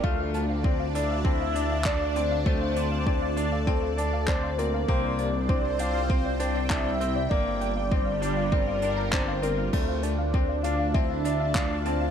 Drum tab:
CC |--------|--------|--------|--------|
HH |-x-x-x-x|-x-x-x-x|-x-x-x-x|-x-x-x-x|
CP |------x-|------x-|------x-|------x-|
BD |o-o-o-o-|o-o-o-o-|o-o-o-o-|o-o-o-o-|

CC |x-------|
HH |-x-x-x-x|
CP |------x-|
BD |o-o-o-o-|